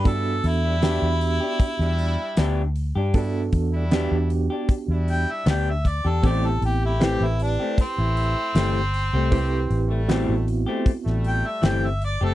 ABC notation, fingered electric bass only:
X:1
M:4/4
L:1/16
Q:1/4=78
K:Em
V:1 name="Fingered electric bass" clef=bass
G,,2 E,,3 E,,2 z2 E,,2 z D,,3 G,,- | G,,2 E,,3 E,,2 z2 E,,2 z D,,3 E,, | A,,,2 A,,,3 A,,,2 z2 A,,,2 z G,,,3 C,,- | C,,2 A,,,3 A,,,2 z2 A,,,2 z G,,,3 F,,, |]